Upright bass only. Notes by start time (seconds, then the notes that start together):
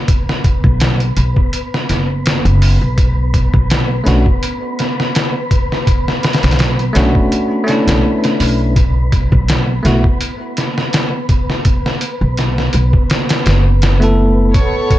0.64 B1
1.17 B1
1.90 F#1
2.45 F#1
2.81 B1
3.54 B1
4.06 B1
6.43 B1
6.95 B1
7.87 B1
8.40 B1
9.32 B1
9.85 B1
12.21 B1
12.74 B1
13.46 F#1